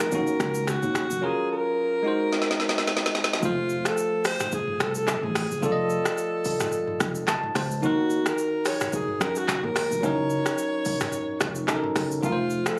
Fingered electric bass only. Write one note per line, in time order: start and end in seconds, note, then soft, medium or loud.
0.12 0.35 D#2 loud
0.40 0.75 C#2 medium
0.83 1.05 D#2 medium
1.10 1.20 F1 medium
3.43 3.78 F1 loud
4.80 5.15 C2 medium
5.23 5.46 A1 medium
5.50 5.61 F#1 medium
5.63 5.98 F1 loud
7.00 7.23 F1 loud
7.55 7.78 C#2 medium
7.83 8.18 D#2 loud
9.20 9.56 F#2 loud
9.63 9.86 D#2 loud
9.91 10.01 F1 medium
10.03 10.38 F#1 loud
11.41 11.63 F1 loud
11.96 12.18 F#1 medium
12.23 12.59 F1 loud